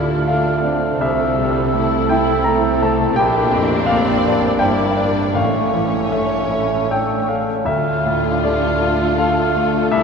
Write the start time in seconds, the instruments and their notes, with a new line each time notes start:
Already playing: grand piano D2 A2 D4 F4 D5 E5, double bass section D2, cello section D3, bassoon A3, viola section A3, french horn section A3 F4, violin section E4 A4, clarinet G4, flute F6
0.27 bassoon A3, violin section D4, grand piano A4 F5, clarinet A4, flute F6
0.64 violin section C4, grand piano D4
1.00 grand piano C2 E5, double bass section C2, cello section C3, bassoon A3, viola section A3, french horn section E4, violin section A4, clarinet C5, flute E6
1.37 grand piano C3, viola section G3
1.74 grand piano A3, viola section A3, violin section E4, clarinet A4
2.09 violin section E4, grand piano E4 G5
2.44 viola section A3, violin section C4, grand piano A4 A#5
2.82 grand piano A3 A5
3.14 double bass section A#1, cello section A#2, viola section A#3, french horn section A#3 D4, bassoon A#3, violin section D4 G4, clarinet G4, grand piano G5, flute D6
3.19 grand piano A#1
3.50 viola section C4
3.54 grand piano F2
3.86 double bass section A1, cello section A2, bassoon A#3, grand piano A#3 F5, violin section D5, flute D6
4.25 grand piano D4
4.58 double bass section G1, grand piano G2 G5, cello section G2, viola section A#3, bassoon A#3, violin section E4 D5, clarinet C5, flute D6
4.96 grand piano D4 D5, violin section D4, clarinet A#4
5.33 double bass section A1, grand piano A2 F5, timpani A2, viola section A3, bassoon A3, french horn section A3 C#4, violin section C#4 C#5, clarinet A4, flute C#6
5.37 cello section A2
5.74 grand piano E3
6.12 grand piano A3 E5, bassoon C#4, flute C#6
6.50 grand piano C#4, bassoon E4
6.90 bassoon D4, grand piano A4 G5, flute E6
7.29 grand piano A3 F5, bassoon C#4
7.65 grand piano D2 E5, double bass section D2, timpani D3, cello section D3, viola section A3, bassoon A3, french horn section F4, violin section A4, flute F6
7.69 violin section F4
8.05 grand piano A2
8.43 bassoon A3, grand piano A3 D5, clarinet G4, flute F6
8.81 clarinet F4, grand piano F4
9.17 bassoon A3, clarinet A4, grand piano A4 F5, flute F6
9.56 grand piano A3
9.91 grand piano C2 E5, double bass section C2, cello section C3, bassoon A3, french horn section A3 E4, violin section E4, clarinet A4, flute E6